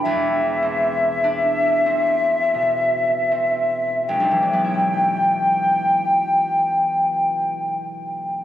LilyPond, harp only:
\new Staff \with { instrumentName = "Harp" } { \clef bass \time 6/8 \key e \minor \tempo 4. = 27 <e,, e,>8 c'8 d'8 c'8 b,8 c'8 | <e,, b,, e fis b e'>2. | }